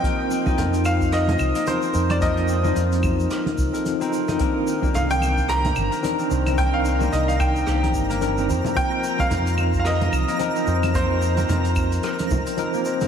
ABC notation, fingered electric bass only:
X:1
M:4/4
L:1/8
Q:"Swing 16ths" 1/4=110
K:Fdor
V:1 name="Fingered electric bass" clef=bass
z2 F,,3 C,, z F,,- | F,,2 F,,2 z C,, z2 | z2 C,,3 G,,, z C,,- | C,,2 C,,2 C,, G,,,2 F,, |
z2 F,,3 C,, z F,,- | F,,2 F,,2 z C,, z2 |]